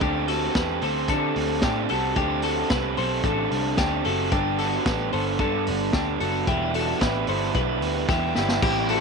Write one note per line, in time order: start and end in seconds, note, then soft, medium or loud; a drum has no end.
0.01 0.48 D2 medium
0.01 0.54 D3 medium
0.01 0.54 C4 medium
0.01 0.29 D4 medium
0.01 0.29 G4 medium
0.01 0.55 G4 medium
0.01 0.56 A4 medium
0.01 kick loud
0.01 closed hi-hat medium
0.28 0.56 F#4 medium
0.28 0.55 A4 medium
0.28 open hi-hat medium
0.55 0.79 E2 medium
0.55 0.82 D3 medium
0.55 0.82 C4 medium
0.55 0.81 G4 medium
0.55 0.83 G4 soft
0.55 0.80 A4 loud
0.55 0.83 B4 medium
0.55 kick loud
0.55 snare loud
0.55 closed hi-hat medium
0.81 1.05 D2 medium
0.81 1.08 C4 soft
0.81 1.08 G4 soft
0.81 1.09 A4 medium
0.81 1.08 A4 medium
0.81 1.10 C5 medium
0.81 open hi-hat medium
1.08 1.62 D3 medium
1.08 1.32 D3 medium
1.08 1.61 C4 medium
1.08 1.60 D4 medium
1.08 1.62 G4 medium
1.08 1.60 A4 medium
1.08 1.63 A4 medium
1.08 kick medium
1.08 closed hi-hat medium
1.36 1.59 D2 medium
1.36 open hi-hat medium
1.61 1.86 A2 loud
1.61 1.89 D3 medium
1.61 1.90 C4 medium
1.61 1.90 D4 medium
1.61 1.89 G4 medium
1.61 1.90 G4 medium
1.61 1.88 A4 medium
1.61 kick loud
1.61 snare loud
1.61 closed hi-hat medium
1.89 2.13 C2 medium
1.89 2.15 C4 soft
1.89 2.16 F#4 medium
1.89 2.15 G4 soft
1.89 2.15 A4 medium
1.89 2.17 A4 medium
1.89 open hi-hat medium
2.15 2.62 D2 medium
2.15 2.69 D3 medium
2.15 2.69 C4 medium
2.15 2.44 D4 medium
2.15 2.71 G4 medium
2.15 2.44 G4 medium
2.15 2.71 A4 medium
2.15 kick medium
2.15 closed hi-hat medium
2.42 2.71 F#4 medium
2.42 2.70 A4 medium
2.42 open hi-hat medium
2.70 2.94 C2 medium
2.70 2.97 D3 medium
2.70 2.97 C4 medium
2.70 2.96 G4 medium
2.70 2.98 G4 medium
2.70 2.96 A4 medium
2.70 2.97 B4 medium
2.70 kick loud
2.70 snare loud
2.70 closed hi-hat medium
2.97 3.21 B1 medium
2.97 3.23 C4 soft
2.97 3.23 G4 soft
2.97 3.24 A4 medium
2.97 3.23 A4 medium
2.97 3.25 C5 medium
2.97 open hi-hat medium
3.24 3.47 A1 medium
3.24 3.76 D3 medium
3.24 3.76 C4 medium
3.24 3.75 D4 medium
3.24 3.78 G4 medium
3.24 3.75 A4 medium
3.24 3.78 A4 medium
3.24 kick medium
3.24 closed hi-hat medium
3.51 3.74 C2 medium
3.51 open hi-hat medium
3.77 4.01 D2 loud
3.77 4.04 D3 medium
3.77 4.05 C4 medium
3.77 4.05 D4 medium
3.77 4.05 G4 medium
3.77 4.04 G4 medium
3.77 4.03 A4 medium
3.77 kick loud
3.77 snare medium
3.77 closed hi-hat medium
4.04 4.28 F#1 medium
4.04 4.31 C4 soft
4.04 4.31 F#4 medium
4.04 4.32 G4 medium
4.04 4.31 A4 medium
4.04 4.32 A4 medium
4.04 open hi-hat medium
4.31 4.78 G1 loud
4.31 4.85 G3 medium
4.31 4.85 B3 medium
4.31 4.85 D4 medium
4.31 4.59 D4 medium
4.31 4.59 G4 medium
4.31 4.85 A4 loud
4.31 kick loud
4.31 closed hi-hat medium
4.58 4.86 F#4 medium
4.58 4.85 A4 medium
4.58 open hi-hat medium
4.85 5.09 A1 medium
4.85 5.12 G3 medium
4.85 5.11 B3 medium
4.85 5.13 D4 medium
4.85 5.13 G4 medium
4.85 5.10 A4 medium
4.85 5.13 B4 medium
4.85 kick loud
4.85 snare loud
4.85 closed hi-hat medium
5.11 5.36 G1 medium
5.11 5.39 B3 soft
5.11 5.38 D4 soft
5.11 5.39 A4 soft
5.11 5.39 A4 medium
5.11 5.40 C5 medium
5.11 open hi-hat medium
5.39 5.69 G2 loud
5.39 5.93 G3 medium
5.39 5.94 B3 medium
5.39 5.93 D4 medium
5.39 5.91 D4 medium
5.39 5.90 A4 medium
5.39 5.93 A4 medium
5.39 kick medium
5.39 closed hi-hat medium
5.67 5.90 G1 medium
5.67 open hi-hat medium
5.93 6.16 D2 medium
5.93 6.20 G3 medium
5.93 6.21 B3 medium
5.93 6.20 D4 medium
5.93 6.21 D4 medium
5.93 6.20 G4 medium
5.93 6.19 A4 medium
5.93 kick loud
5.93 snare loud
5.93 closed hi-hat medium
6.20 6.44 F#1 medium
6.20 6.48 B3 soft
6.20 6.48 D4 soft
6.20 6.48 F#4 medium
6.20 6.47 A4 medium
6.20 open hi-hat medium
6.47 6.93 E1 medium
6.47 7.00 D3 medium
6.47 7.00 E3 medium
6.47 7.00 G3 medium
6.47 7.00 B3 medium
6.47 6.75 E4 medium
6.47 7.01 E4 medium
6.47 6.74 G4 medium
6.47 kick loud
6.47 closed hi-hat medium
6.74 7.02 F#4 medium
6.74 7.01 A4 medium
6.74 open hi-hat medium
7.00 7.24 A1 medium
7.00 7.28 D3 medium
7.00 7.27 E3 medium
7.00 7.28 G3 medium
7.00 7.28 B3 medium
7.00 7.27 E4 medium
7.00 7.28 G4 soft
7.00 7.28 B4 medium
7.00 kick loud
7.00 snare loud
7.00 closed hi-hat medium
7.27 7.51 G1 medium
7.27 7.54 G3 soft
7.27 7.55 B3 medium
7.27 7.55 E4 soft
7.27 7.55 A4 medium
7.27 7.55 C5 medium
7.27 open hi-hat medium
7.54 7.81 B1 medium
7.54 8.08 D3 medium
7.54 8.09 G3 medium
7.54 8.08 B3 medium
7.54 8.09 E4 medium
7.54 8.06 G4 medium
7.54 8.05 B4 medium
7.54 kick medium
7.54 closed hi-hat medium
7.81 8.04 D2 medium
7.81 open hi-hat medium
8.08 8.31 E2 medium
8.08 8.35 D3 medium
8.08 8.35 E3 medium
8.08 8.36 G3 medium
8.08 8.35 B3 medium
8.08 8.35 E4 medium
8.08 8.34 E4 medium
8.08 8.35 G4 medium
8.08 kick loud
8.08 snare soft
8.35 8.59 G1 medium
8.35 8.62 G3 soft
8.35 8.63 B3 soft
8.35 8.62 E4 medium
8.35 8.62 E4 soft
8.35 8.62 G4 medium
8.35 snare medium
8.49 snare medium
8.62 9.00 A1 medium
8.62 8.89 A2 medium
8.62 8.89 G3 loud
8.62 9.00 A3 medium
8.62 9.00 C4 medium
8.62 8.90 C4 medium
8.62 8.89 E4 medium
8.62 8.88 E4 loud
8.62 8.89 G4 medium
8.62 9.00 G4 medium
8.62 kick loud
8.62 crash loud
8.89 9.00 C4 soft
8.89 9.00 E4 medium
8.89 9.00 F#4 medium
8.89 9.00 G4 medium
8.89 9.00 A4 medium
8.89 open hi-hat medium